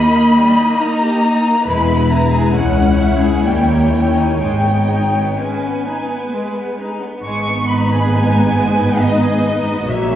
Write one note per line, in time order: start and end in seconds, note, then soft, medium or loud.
0.00 1.67 A#3 medium
0.00 0.16 D#4 soft
0.00 1.66 D#4 medium
0.00 1.62 D#5 medium
0.00 0.81 B5 medium
0.16 0.38 A#3 soft
0.38 0.59 G3 soft
0.59 0.81 A#3 soft
0.81 1.02 D#4 soft
0.81 1.67 A#5 medium
1.02 1.24 G4 soft
1.23 1.45 D#4 soft
1.46 1.67 A#3 soft
1.67 2.40 E1 medium
1.67 2.40 E2 soft
1.67 2.52 G#3 soft
1.67 1.87 G#3 soft
1.67 4.34 E4 soft
1.67 2.54 B4 soft
1.67 2.09 B5 medium
1.89 2.10 B3 soft
2.10 2.32 E4 soft
2.10 2.54 A#5 medium
2.33 2.54 G#4 soft
2.54 3.29 C#2 soft
2.54 2.74 G#3 soft
2.54 3.44 C#4 soft
2.54 5.37 C#5 soft
2.54 3.43 F#5 medium
2.75 2.98 C#4 soft
2.98 3.21 E4 soft
3.22 3.44 G#4 soft
3.43 4.22 D#2 soft
3.43 3.65 G3 soft
3.43 4.37 A#3 soft
3.43 4.36 G5 soft
3.68 3.91 A#3 soft
3.91 4.14 C#4 soft
4.14 4.38 D#4 soft
4.37 5.20 G#1 soft
4.37 5.20 G#2 soft
4.37 5.27 G#3 soft
4.37 4.61 G#3 soft
4.37 5.27 D#4 soft
4.37 5.34 G5 medium
4.63 4.87 B3 soft
4.89 5.13 D#4 soft
5.14 5.38 B3 soft
5.36 5.61 G#3 soft
5.36 5.81 C#4 soft
5.36 7.04 B4 soft
5.36 6.78 G#5 soft
5.61 5.84 B3 soft
5.84 6.31 B3 soft
5.84 6.09 D#4 soft
6.09 6.32 B3 soft
6.31 7.24 G#3 soft
6.31 6.54 G#3 soft
6.54 6.78 B3 soft
6.79 7.02 D#4 soft
7.02 7.24 B3 soft
7.23 9.84 G#1 soft
7.23 9.84 G#2 soft
7.23 7.45 G#3 soft
7.23 9.84 B3 soft
7.23 9.84 D#4 soft
7.23 9.84 B4 soft
7.23 7.65 C#6 medium
7.46 7.69 B3 soft
7.68 7.91 D#4 soft
7.68 8.13 B5 medium
7.92 8.13 G#4 soft
8.13 8.35 D#4 soft
8.13 9.01 G#5 medium
8.36 8.58 B3 soft
8.57 8.79 G#3 soft
8.79 9.01 B3 soft
9.00 9.23 D#4 soft
9.00 9.88 D#5 medium
9.23 9.45 G#4 soft
9.45 9.67 D#4 soft
9.67 9.88 B3 soft
9.87 10.15 A#1 medium
9.87 10.15 A#2 soft
9.87 10.15 F#3 medium
9.87 10.09 A#3 soft
9.87 10.15 F#4 medium
9.87 10.15 C#5 soft
9.87 10.15 E5 medium
10.09 10.15 C#4 soft